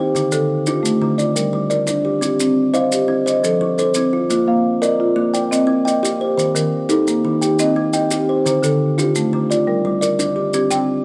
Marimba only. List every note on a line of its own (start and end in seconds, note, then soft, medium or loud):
0.00 0.15 G4 medium
0.00 0.15 D#5 medium
0.32 0.67 D3 medium
0.32 0.84 A4 medium
0.67 1.19 G4 medium
0.83 1.18 A3 medium
1.18 1.53 F4 medium
1.36 1.71 G3 medium
1.36 1.69 A#4 medium
1.70 2.22 A#4 medium
1.87 2.22 D4 medium
2.22 2.57 G4 medium
2.41 2.75 C4 medium
2.75 3.27 F5 medium
2.93 3.27 G4 medium
3.27 3.61 D#5 medium
3.44 3.78 F3 medium
3.44 3.77 A4 medium
3.78 4.30 A4 medium
3.95 4.30 C4 medium
4.30 4.65 F4 medium
4.47 4.82 A#3 medium
4.47 5.00 F5 medium
4.83 5.34 D#5 medium
5.00 5.34 F4 medium
5.34 5.69 D5 medium
5.51 5.86 C4 medium
5.51 5.85 D#5 medium
5.86 6.38 D#5 medium
6.03 6.38 G4 medium
6.38 6.72 C5 medium
6.55 6.90 D#3 medium
6.55 7.07 A#4 medium
6.89 7.41 A4 medium
7.07 7.42 A#3 medium
7.42 7.77 G4 medium
7.60 7.94 C4 medium
7.60 7.93 D#5 medium
7.94 8.46 D#5 medium
8.11 8.46 G4 medium
8.45 8.80 C5 medium
8.63 8.97 D3 medium
8.63 9.15 A4 medium
8.99 9.50 G4 medium
9.16 9.50 A3 medium
9.50 9.84 F4 medium
9.67 10.02 G3 medium
9.67 10.01 A#4 medium
10.02 10.54 A#4 medium
10.19 10.54 D4 medium
10.54 10.88 G4 medium
10.71 11.05 C4 medium
10.71 11.05 G5 medium